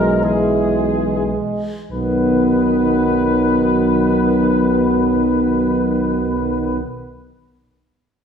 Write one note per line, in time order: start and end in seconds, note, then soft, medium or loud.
0.00 1.34 B1 soft
0.00 0.19 E3 soft
0.00 0.24 F#3 soft
0.00 1.75 G#3 medium
0.00 0.22 A#4 soft
0.22 1.38 E3 soft
0.22 1.36 E3 soft
0.22 1.38 G#4 soft
1.91 6.79 B1 soft
1.91 6.79 D#3 soft
1.91 6.79 F#3 soft
1.91 6.80 B3 soft
1.91 6.79 B4 soft